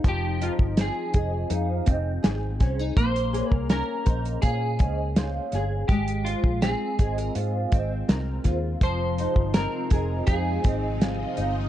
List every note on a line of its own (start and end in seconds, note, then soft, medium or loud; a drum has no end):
0.00 0.77 C4 medium
0.00 0.39 D#4 medium
0.00 1.13 G#4 medium
0.04 0.48 F1 medium
0.04 2.96 F3 medium
0.04 kick loud
0.04 closed hi-hat medium
0.08 0.44 G4 medium
0.41 1.49 D#4 medium
0.41 0.52 F4 medium
0.41 0.59 G#4 medium
0.41 0.59 C5 medium
0.41 closed hi-hat medium
0.59 0.89 G1 medium
0.59 kick medium
0.77 1.86 C4 medium
0.77 2.58 G#4 medium
0.77 snare loud
0.77 closed hi-hat medium
1.14 1.44 F1 medium
1.14 2.22 G#4 medium
1.14 1.50 C5 soft
1.14 1.49 D#5 medium
1.14 kick medium
1.14 closed hi-hat medium
1.50 1.80 F2 loud
1.50 2.60 D#4 medium
1.50 1.86 C5 medium
1.50 1.86 F5 medium
1.50 closed hi-hat medium
1.86 2.17 F1 medium
1.86 3.69 C4 medium
1.86 2.05 C5 medium
1.86 2.05 D#5 medium
1.86 kick medium
1.86 closed hi-hat medium
2.23 2.62 G#1 medium
2.23 3.33 G#4 medium
2.23 snare loud
2.23 closed hi-hat medium
2.60 2.90 C2 medium
2.60 2.79 C#4 medium
2.60 2.79 G#4 medium
2.60 2.78 C5 medium
2.60 kick medium
2.60 snare soft
2.60 closed hi-hat medium
2.79 3.05 D#4 medium
2.97 3.41 A#1 loud
2.97 5.94 A#3 medium
2.97 3.53 C5 loud
2.97 kick loud
2.97 closed hi-hat medium
3.16 closed hi-hat medium
3.33 4.43 G#4 medium
3.33 3.52 A#4 medium
3.33 3.52 C#5 medium
3.33 closed hi-hat medium
3.52 3.81 C2 medium
3.52 3.70 A#4 loud
3.52 kick medium
3.70 4.80 C#4 medium
3.70 4.42 A#4 medium
3.70 snare loud
3.70 closed hi-hat medium
4.06 4.36 A#1 medium
4.06 5.17 C5 medium
4.06 4.42 C5 soft
4.06 4.42 D#5 medium
4.06 kick medium
4.06 closed hi-hat medium
4.25 closed hi-hat soft
4.42 4.82 A#2 medium
4.42 5.88 G#4 loud
4.42 5.54 G#4 medium
4.42 4.78 C#5 medium
4.42 4.78 F5 medium
4.42 kick medium
4.42 closed hi-hat medium
4.79 5.38 C#2 medium
4.79 5.97 C#4 medium
4.79 4.98 C5 medium
4.79 4.97 D#5 medium
4.79 kick medium
4.79 closed hi-hat medium
5.16 7.21 C5 medium
5.16 5.69 C#5 medium
5.16 5.68 F5 medium
5.16 snare loud
5.16 closed hi-hat medium
5.52 5.82 G1 medium
5.52 6.99 G#4 medium
5.52 snare soft
5.52 closed hi-hat medium
5.88 6.33 G#1 medium
5.88 8.82 G#3 medium
5.88 6.26 G4 medium
5.88 kick loud
5.88 closed hi-hat medium
6.08 closed hi-hat medium
6.25 6.59 F4 medium
6.25 7.36 F4 medium
6.25 6.44 G#4 medium
6.25 6.44 C5 medium
6.25 closed hi-hat medium
6.44 6.73 A#1 medium
6.44 kick medium
6.62 7.72 C4 medium
6.62 8.41 G#4 medium
6.62 snare loud
6.62 closed hi-hat medium
6.99 7.28 G#1 medium
6.99 7.18 G#4 medium
6.99 7.34 C5 soft
6.99 7.34 D#5 medium
6.99 kick medium
6.99 closed hi-hat medium
7.18 8.07 A#4 medium
7.18 closed hi-hat medium
7.35 7.65 G#2 medium
7.35 8.44 F4 medium
7.35 7.70 C5 medium
7.35 7.70 F5 medium
7.35 closed hi-hat medium
7.72 8.02 G#1 medium
7.72 9.55 C4 medium
7.72 7.90 C5 medium
7.72 7.89 D#5 medium
7.72 kick loud
7.72 closed hi-hat medium
8.08 8.38 C2 medium
8.08 8.89 A#4 medium
8.08 snare loud
8.08 closed hi-hat medium
8.44 8.74 D#2 medium
8.44 9.19 F4 medium
8.44 8.63 G#4 medium
8.44 8.63 C5 medium
8.44 kick medium
8.44 snare soft
8.44 closed hi-hat medium
8.81 9.25 F1 medium
8.81 11.69 C3 medium
8.81 11.69 F3 medium
8.81 11.69 G#3 medium
8.81 11.69 D#4 medium
8.81 9.54 C5 loud
8.81 kick loud
8.81 closed hi-hat medium
9.17 10.26 D#4 medium
9.17 9.36 G#4 medium
9.17 9.35 C5 medium
9.17 closed hi-hat medium
9.36 9.66 G1 medium
9.36 kick medium
9.54 10.64 C4 medium
9.54 10.26 A#4 medium
9.54 snare loud
9.54 closed hi-hat medium
9.90 10.21 F1 medium
9.90 11.69 G#4 medium
9.90 10.26 C5 soft
9.90 10.26 D#5 medium
9.90 kick medium
9.90 closed hi-hat medium
10.27 10.57 F2 medium
10.27 11.35 D#4 medium
10.27 11.69 G#4 loud
10.27 10.63 C5 medium
10.27 10.63 F5 medium
10.27 kick medium
10.27 closed hi-hat medium
10.64 11.23 G#1 medium
10.64 11.69 C4 medium
10.64 10.83 C5 medium
10.64 10.83 D#5 medium
10.64 kick medium
10.64 closed hi-hat medium
11.01 11.53 C5 medium
11.01 11.53 F5 medium
11.01 snare loud
11.01 closed hi-hat medium
11.37 11.67 G1 medium
11.37 11.69 D#4 medium
11.37 closed hi-hat medium